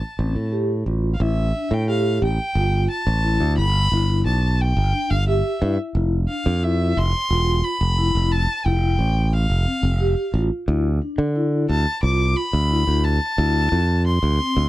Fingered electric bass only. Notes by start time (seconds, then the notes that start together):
0.19 A1
0.35 A2
0.86 A1
1.20 A1
1.71 A2
2.22 A1
2.55 G1
3.07 A1
3.40 D2
3.58 G1
3.92 G1
4.26 B1
4.77 G1
5.11 G1
5.62 G2
5.95 F1
6.46 F2
6.97 F1
7.31 E1
7.81 F1
8.15 F1
8.66 F1
8.99 A1
9.50 F1
9.83 F1
10.34 A1
10.68 D2
11.18 D3
11.69 D2
12.03 C2
12.53 D2
12.87 D2
13.38 D2
13.72 F2
14.23 D2
14.57 D2